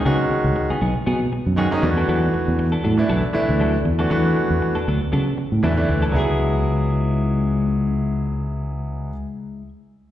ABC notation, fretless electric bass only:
X:1
M:4/4
L:1/16
Q:"Swing 16ths" 1/4=118
K:C#phr
V:1 name="Fretless electric bass" clef=bass
C,2 z C,, z2 B,,, z B,,2 z F,,2 z E,,2 | E,,2 z E,,3 A,,2 B,,, z2 D,,3 E,,2 | E,2 z E,, z2 D,, z C,2 z A,, E,,2 D,,2 | C,,16- |
C,,16 |]